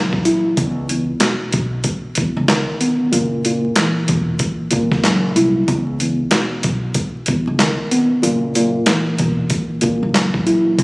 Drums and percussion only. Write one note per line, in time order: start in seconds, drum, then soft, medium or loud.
0.13 kick loud
0.25 closed hi-hat medium
0.57 kick loud
0.57 closed hi-hat loud
0.89 closed hi-hat medium
1.20 snare loud
1.20 clap medium
1.20 closed hi-hat loud
1.52 kick loud
1.52 closed hi-hat medium
1.84 kick loud
1.84 closed hi-hat medium
2.15 kick medium
2.15 closed hi-hat medium
2.48 snare loud
2.48 clap medium
2.48 closed hi-hat medium
2.81 closed hi-hat medium
3.13 closed hi-hat loud
3.45 closed hi-hat medium
3.76 snare loud
3.76 clap medium
3.76 closed hi-hat loud
4.08 kick loud
4.08 closed hi-hat medium
4.39 kick medium
4.39 closed hi-hat medium
4.71 kick medium
4.71 closed hi-hat medium
4.92 kick medium
4.92 snare soft
5.04 snare loud
5.04 clap medium
5.04 closed hi-hat medium
5.36 closed hi-hat medium
5.68 kick loud
5.68 closed hi-hat loud
6.00 closed hi-hat medium
6.31 snare loud
6.31 clap medium
6.31 closed hi-hat loud
6.63 kick medium
6.63 closed hi-hat medium
6.94 kick medium
6.94 closed hi-hat medium
7.26 kick medium
7.26 closed hi-hat medium
7.59 snare loud
7.59 clap medium
7.59 closed hi-hat medium
7.91 closed hi-hat medium
8.23 closed hi-hat loud
8.55 closed hi-hat medium
8.86 snare loud
8.86 clap medium
8.86 closed hi-hat loud
9.18 kick loud
9.18 closed hi-hat medium
9.50 kick medium
9.50 closed hi-hat medium
9.81 kick medium
9.81 closed hi-hat medium
10.14 snare loud
10.14 clap medium
10.14 closed hi-hat medium
10.34 kick loud
10.47 closed hi-hat medium
10.79 kick loud
10.79 closed hi-hat loud